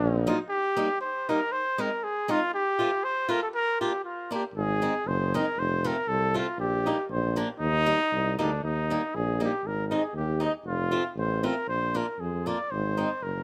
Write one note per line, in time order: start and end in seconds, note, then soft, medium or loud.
0.00 0.31 A#1 loud
0.00 0.24 D#4 loud
0.27 0.37 F#3 medium
0.27 0.37 A#3 medium
0.27 0.37 D#4 medium
0.27 0.37 F4 medium
0.49 0.97 G4 loud
0.77 0.88 G3 medium
0.77 0.87 A#3 medium
0.77 0.87 D#4 medium
1.01 1.31 C5 medium
1.29 1.39 G3 medium
1.29 1.39 A#3 soft
1.29 1.39 D#4 medium
1.29 1.54 A#4 medium
1.52 1.82 C5 loud
1.78 1.89 G#3 medium
1.78 1.89 C4 soft
1.78 1.89 D#4 medium
1.78 2.05 A#4 medium
2.03 2.32 G#4 medium
2.28 2.39 G#3 soft
2.28 2.39 C4 soft
2.28 2.39 D#4 medium
2.28 2.52 F4 loud
2.55 3.06 G4 loud
2.79 2.90 A3 soft
2.79 2.90 C4 medium
2.79 2.89 F4 medium
3.04 3.32 C5 medium
3.29 3.40 A3 medium
3.29 3.40 C4 soft
3.29 3.40 F4 medium
3.29 3.42 A#4 medium
3.43 3.48 A4 medium
3.54 3.80 A#4 loud
3.81 3.91 A#3 soft
3.81 3.91 D4 soft
3.81 3.91 F4 medium
3.81 4.02 G4 medium
4.05 4.30 F4 medium
4.31 4.42 A#3 soft
4.31 4.42 D4 soft
4.31 4.42 F4 soft
4.31 4.44 G4 medium
4.54 4.88 G#1 medium
4.54 5.09 G#4 medium
4.82 4.93 G#3 soft
4.82 4.93 C4 soft
4.82 4.93 D#4 medium
5.06 5.39 F#1 medium
5.06 5.37 C5 medium
5.34 5.45 G#3 medium
5.34 5.45 C4 soft
5.34 5.45 D#4 medium
5.34 5.61 A#4 medium
5.57 5.90 F1 medium
5.57 5.88 C5 loud
5.84 5.95 A3 medium
5.84 5.96 C4 soft
5.84 5.95 F4 medium
5.84 6.09 A#4 medium
6.08 6.41 C2 medium
6.08 6.36 A4 medium
6.34 6.46 A3 medium
6.34 6.46 C4 soft
6.34 6.46 F4 medium
6.34 6.58 F4 medium
6.58 6.91 A#1 medium
6.58 7.06 G4 medium
6.86 6.96 G3 soft
6.86 6.97 A#3 medium
6.86 6.96 D#4 soft
7.10 7.42 A#1 medium
7.10 7.36 C5 medium
7.36 7.47 F3 soft
7.36 7.47 A#3 medium
7.36 7.47 D4 medium
7.60 7.93 D#2 medium
7.60 8.35 D#4 loud
7.86 7.97 G3 medium
7.86 7.98 A#3 medium
7.86 7.98 D#4 soft
8.12 8.37 C2 medium
8.39 8.61 D2 medium
8.39 8.49 G3 soft
8.39 8.49 A#3 medium
8.39 8.62 D4 medium
8.39 8.49 D#4 medium
8.64 8.96 D#2 medium
8.64 9.17 D#4 medium
8.90 9.01 G3 soft
8.90 9.01 A#3 soft
8.90 9.01 D#4 medium
9.15 9.47 A#1 medium
9.15 9.42 G#4 medium
9.40 9.51 G3 soft
9.40 9.51 A#3 soft
9.40 9.51 D#4 soft
9.44 9.68 G4 medium
9.64 9.96 G#1 medium
9.64 9.87 A#4 medium
9.87 10.01 D#4 medium
9.87 9.97 A#4 soft
9.92 10.02 G#3 soft
9.92 10.02 C4 soft
9.96 10.16 G#4 medium
10.14 10.47 D#2 medium
10.14 10.41 G4 medium
10.40 10.51 G#3 soft
10.40 10.51 C4 soft
10.40 10.51 D#4 medium
10.44 10.54 D#4 medium
10.65 10.98 F1 medium
10.65 11.13 F4 medium
10.91 11.02 A3 soft
10.91 11.02 C4 medium
10.91 11.02 F4 medium
11.15 11.49 A1 medium
11.15 11.47 C5 medium
11.43 11.54 A3 soft
11.43 11.54 C4 medium
11.43 11.54 F4 medium
11.43 11.67 A#4 medium
11.67 12.00 A#1 medium
11.67 11.98 C5 medium
11.94 12.05 A#3 medium
11.94 12.05 D4 soft
11.94 12.05 F4 medium
11.94 12.21 A#4 medium
12.19 12.52 F2 medium
12.19 12.49 G#4 medium
12.46 12.57 A#3 soft
12.46 12.57 D4 soft
12.46 12.57 F4 soft
12.46 12.72 D5 medium
12.71 13.05 G#1 medium
12.71 13.24 C5 medium
12.97 13.09 G#3 soft
12.97 13.09 C4 soft
12.97 13.08 D#4 medium
13.22 13.43 F#1 medium
13.22 13.43 A#4 medium